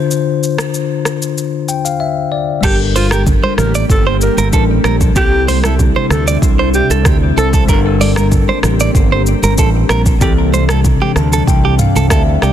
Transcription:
Already playing: D3 D4 F4 C5
0.11 shaker
0.43 shaker
0.58 cross-stick, shaker
0.74 shaker
1.05 cross-stick, shaker
1.22 shaker
1.38 shaker
1.69 G5, shaker
1.85 F5, shaker
2.00 E5
2.32 D5
2.61 G1 G3 A#3 D4 G4 A4, kick, crash, shaker
2.66 A#4
2.96 F4 C5, open hi-hat, high conga, shaker
3.11 G4 A#4, cross-stick, high conga, shaker
3.27 kick, low conga, shaker
3.43 C5, high conga
3.58 A1 A#4, cross-stick, low conga, shaker
3.75 D5, shaker
3.89 G1 A4, kick, shaker
4.07 C5
4.21 A#4, shaker
4.37 G1 A#4, high conga, shaker
4.52 A1 G3 D4 A4 A#4, kick, shaker
4.84 A#1 A#4, cross-stick, high conga, shaker
5.01 kick, shaker
5.13 C2 C3 G3 C4 D4 E4 G4, kick, shaker
5.18 A4
5.48 C5, open hi-hat, high conga, shaker
5.64 E4 A4, cross-stick, high conga, shaker
5.79 kick, low conga, shaker
5.96 C5, high conga
6.10 D2 A4, cross-stick, low conga, shaker
6.28 D5, shaker
6.42 C2, kick, shaker
6.59 C5
6.74 G4, shaker
6.90 C2 A4, high conga, shaker
7.05 D2 G4, kick, cross-stick, shaker
7.36 C2 C3 C4 E4 A4 C5, high conga, shaker
7.53 A4, kick, shaker
7.66 G1 G3 A#3 D4 G4 A4 A#4, kick, shaker
7.71 A#4
8.01 D5, open hi-hat, high conga, shaker
8.16 A#4, cross-stick, high conga, shaker
8.32 kick, low conga, shaker
8.48 C5, high conga
8.63 A1, cross-stick, low conga, shaker
8.80 D5, shaker
8.95 G1, kick, shaker
9.12 C5
9.26 shaker
9.43 G1 A#4, high conga, shaker
9.58 A1 A4, kick, shaker
9.89 A#1 A#4, cross-stick, high conga, shaker
10.06 kick, shaker
10.19 C2 C3 E3 G3 C4 D4 G4, kick, shaker
10.24 A4
10.53 C5, high conga, shaker
10.69 A4, cross-stick, high conga, shaker
10.84 kick, low conga, shaker
11.01 G4, high conga
11.16 D2 A5, cross-stick, low conga, shaker
11.33 A4, shaker
11.47 C2 G5, kick, shaker
11.65 G4
11.79 F5, mid tom, shaker
11.95 C2 A4, high conga, shaker
12.10 D2 A4 E5, kick, cross-stick, shaker
12.42 C2 G4 D5, cross-stick, high conga, shaker

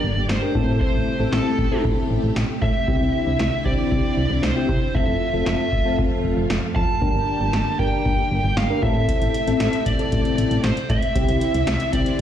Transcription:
Already playing: D3 A#3 G4 D5
0.04 G1
0.16 G1
0.29 G1 C5, snare
0.42 D4 G4 A#4
0.55 A2 C3 A3 C4 E4 G4 A4, kick
0.81 C5, kick
0.94 A1
1.20 A1 C4 E4 A4
1.33 A1 A4, snare
1.59 A1, kick
1.72 C4 E4 A4
1.85 A1, kick
2.10 A1
2.23 A1
2.36 A1, snare
2.62 A2 E5, kick
2.88 C2 D3 C4 E4 G4, kick
3.01 C2
3.27 C2
3.39 C2, snare
3.65 C2 C4 E4 G4 D5, kick
3.92 C2, kick
4.17 C2
4.30 C2
4.43 C2 C5, snare
4.56 C4 E4 G4
4.69 C3, kick
4.95 F1 F3 A3 C4 F4 A4 E5, kick
5.08 F1
5.34 F1 C4 F4 A4
5.46 F1 E5, snare
5.72 F1, kick
5.85 C4 F4 A4
5.99 F1, kick
6.24 F1
6.37 F1
6.50 F1, snare
6.76 F2 A5, kick
7.02 G1 D3 A#3 D4 G4 A#4, kick
7.15 G1
7.41 G1
7.53 G1, snare
7.79 G1 D4 G4 A#4 G5, kick
8.06 G1, kick
8.31 G1
8.44 G1
8.57 G1 F5, snare
8.70 D4 G4 A#4
8.83 A2 C3 A3 C4 E4 G4 A4 E5, kick
9.09 kick, closed hi-hat
9.22 A1, closed hi-hat
9.34 closed hi-hat
9.47 A1 C4 E4 A4, closed hi-hat
9.60 A1, snare, closed hi-hat
9.73 closed hi-hat
9.86 A1 D5, kick, closed hi-hat
9.99 C4 E4 A4, closed hi-hat
10.12 A1, kick, closed hi-hat
10.25 closed hi-hat
10.38 A1, closed hi-hat
10.51 A1, closed hi-hat
10.64 A1 C5, snare, closed hi-hat
10.77 closed hi-hat
10.90 A2 E5, kick, closed hi-hat
11.02 closed hi-hat
11.16 C2 D3 C4 E4 G4, kick, closed hi-hat
11.29 C2, closed hi-hat
11.41 closed hi-hat
11.54 C2, closed hi-hat
11.67 C2, snare, closed hi-hat
11.80 closed hi-hat
11.93 C2 C4 E4 G4 D5, kick, closed hi-hat
12.06 closed hi-hat

